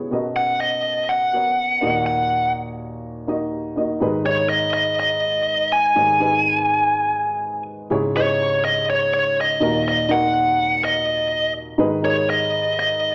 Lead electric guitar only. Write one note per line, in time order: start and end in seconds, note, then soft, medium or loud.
0.36 0.59 F#5 medium
0.60 1.11 D#5 medium
1.09 2.05 F#5 medium
2.06 2.52 F#5 medium
4.26 4.49 C#5 medium
4.49 4.72 D#5 loud
4.74 4.98 D#5 medium
5.00 5.74 D#5 loud
5.72 7.63 G#5 loud
8.17 8.64 C#5 medium
8.65 8.87 D#5 medium
8.90 9.12 C#5 medium
9.14 9.38 C#5 medium
9.41 9.87 D#5 loud
9.88 10.12 D#5 loud
10.11 10.85 F#5 loud
10.85 11.52 D#5 medium
12.05 12.27 C#5 medium
12.30 12.78 D#5 medium
12.79 13.15 D#5 medium